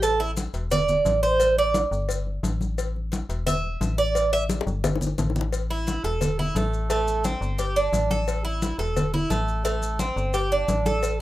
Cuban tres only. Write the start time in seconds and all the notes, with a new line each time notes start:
0.03 A4
0.20 E4
0.71 D5
1.23 C5
1.58 D5
3.47 E5
3.98 D5
4.33 E5
5.71 E4
6.04 A4
6.39 E4
6.56 A3
6.90 A3
7.24 C4
7.58 G4
7.76 D4
8.11 A4
8.45 E4
8.79 A4
9.14 E4
9.30 A3
9.65 A3
9.99 C4
10.34 G4
10.52 D4
10.86 A4